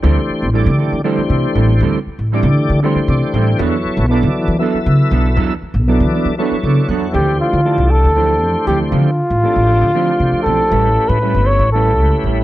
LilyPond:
<<
  \new Staff \with { instrumentName = "Muted trumpet" } { \time 7/8 \key d \dorian \tempo 4 = 118 r2. r8 | r2. r8 | r2. r8 | r2. r8 |
g'8 f'4 a'4. g'8 | f'2. a'8~ | a'8. b'8. cis''8 a'4 r8 | }
  \new Staff \with { instrumentName = "Tonewheel organ" } { \time 7/8 \key d \dorian << { r2. r8 | r2 r8 d''8 g''8 | r2. r8 | r2 r8 d''8 fis''8 |
r2. r8 | r2. r8 | r2. r8 | } \\ { <e a d' g' c''>4 <e a d' g' d''>4 <e a d' g' c''>4.~ | <e a d' g' c''>8 r8 <e a d' g' d''>4 <e a d' g' c''>4. | <fis b e' a' cis''>4 <fis b e' a' d''>4 <fis b e' a' e''>4.~ | <fis b e' a' e''>8 r8 <fis b e' a' d''>4 <fis b e' a' cis''>4. |
<e a d' g' c''>4 <e a d' g' a'>4 <e a d' g' c''>4.~ | <e a d' g' c''>8 r8 <f a d' g' a'>4 <f a d' g' c''>4. | <a cis' e' g' b'>4 <a cis' e' g' b'>4 <a cis' e' g' b'>4. | } >> }
  \new Staff \with { instrumentName = "Clean electric guitar" } { \time 7/8 \key d \dorian <g c' e' a'>8 r8 <g c' e' a'>8 <c' e' a'>8 <g c' e' a'>8 <c' e' a'>8 <g c' e' a'>8 | <g c' e' a'>8 r8 <g c' e' a'>8 r8 <g c' e' a'>8 r8 <g c' e' a'>8 | <fis b d' a'>8 r8 <fis b d' a'>8 r8 <fis b d' a'>8 r8 <fis b d' a'>8 | <fis b d' a'>8 r8 <fis b d' a'>8 <b d' a'>8 <fis b d' a'>8 <b d' a'>8 <fis b d' a'>8 |
<f c' e' a'>8 r8 <f c' e' a'>8 r8 <f c' e' a'>8 r8 <f c' e' a'>8 | <f c' e' a'>8 r8 <f c' e' a'>8 <c' e' a'>8 <f c' e' a'>8 r8 <f c' e' a'>8 | <g cis' e' b'>8 r8 <g cis' e' b'>8 <cis' e' b'>8 <g cis' e' b'>8 <cis' e' b'>8 <g cis' e' b'>8 | }
  \new Staff \with { instrumentName = "Upright bass" } { \clef bass \time 7/8 \key d \dorian d,16 r8 a,,8 d8 d8 r16 c16 r16 a,,8 | d,16 r8 a,,8 d8 d8 r16 c16 r16 a,,8 | e,16 r8 b,,8 e8 e8 r16 cis16 r16 b,,8 | e,16 r8 b,,8 e8 e8 r16 cis16 r16 e,8 |
d,8 r16 d8 c,8 d,8. f,16 r16 d,8 | d8 r16 a,,16 r16 a,,8 d8 r16 c16 r16 b,,16 r16 | a,,8 r16 a,8 g,,8 a,,8. cis,16 r16 a,,8 | }
>>